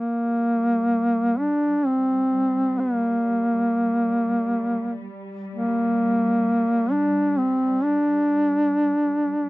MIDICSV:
0, 0, Header, 1, 3, 480
1, 0, Start_track
1, 0, Key_signature, -2, "minor"
1, 0, Tempo, 500000
1, 9114, End_track
2, 0, Start_track
2, 0, Title_t, "Duduk"
2, 0, Program_c, 0, 69
2, 0, Note_on_c, 0, 58, 68
2, 1335, Note_on_c, 0, 62, 82
2, 1349, Note_off_c, 0, 58, 0
2, 1789, Note_on_c, 0, 60, 70
2, 1803, Note_off_c, 0, 62, 0
2, 2688, Note_on_c, 0, 58, 65
2, 2702, Note_off_c, 0, 60, 0
2, 4891, Note_off_c, 0, 58, 0
2, 5321, Note_on_c, 0, 58, 75
2, 6645, Note_on_c, 0, 62, 81
2, 6659, Note_off_c, 0, 58, 0
2, 7089, Note_on_c, 0, 60, 73
2, 7103, Note_off_c, 0, 62, 0
2, 7525, Note_on_c, 0, 62, 87
2, 7539, Note_off_c, 0, 60, 0
2, 9114, Note_off_c, 0, 62, 0
2, 9114, End_track
3, 0, Start_track
3, 0, Title_t, "Cello section"
3, 0, Program_c, 1, 48
3, 0, Note_on_c, 1, 55, 42
3, 9114, Note_off_c, 1, 55, 0
3, 9114, End_track
0, 0, End_of_file